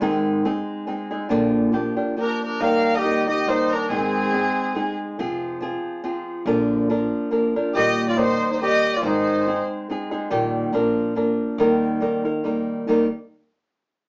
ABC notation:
X:1
M:3/4
L:1/16
Q:"Swing" 1/4=140
K:Eb
V:1 name="Violin section"
z12 | z8 B2 B2 | f3 e3 e2 c2 B2 | A8- A2 z2 |
z12 | z12 | e3 d c3 c e3 d | c6 z6 |
z12 | z12 | z12 |]
V:2 name="Trumpet"
z12 | z8 D2 D2 | B3 G3 G2 E2 D2 | C8- C2 z2 |
z12 | z12 | G3 F E3 E G3 F | E6 z6 |
z12 | z12 | z12 |]
V:3 name="Nylon-string guitar"
[A,,E,A,CEA]4 [A,CEA]4 [A,CEA]2 [A,CEA]2 | [B,,D,F,B,DG]4 [F,B,DG]2 [F,B,DG]2 [F,B,DG]4 | [E,G,B,EG]4 [G,B,EG]2 [B,EG]2 [G,B,EG]4 | [A,,E,A,CEA]4 [A,CEA]4 [A,CEA]4 |
[F,CFA]4 [F,CFA]4 [F,CFA]4 | [B,,D,F,B,DB]4 [F,B,DB]4 [F,B,DB]2 [F,B,DB]2 | [B,,E,G,B,EG]4 [G,B,EG]4 [G,B,EG]4 | [A,,E,A,CEA]4 [A,CEA]4 [A,CEA]2 [A,CEA]2 |
[B,,E,G,B,EG]4 [F,B,DB]4 [F,B,DB]4 | [E,G,B,EB]4 [G,B,EB]2 [B,EB]2 [G,B,EB]4 | [E,G,B,EB]2 z8 z2 |]
V:4 name="Upright bass" clef=bass
A,,8 z4 | B,,,8 z4 | E,,8 z4 | A,,,8 z4 |
F,,,8 z4 | B,,,8 z4 | B,,,8 z4 | A,,,8 z4 |
B,,,4 B,,,8 | E,,8 z4 | E,,2 z8 z2 |]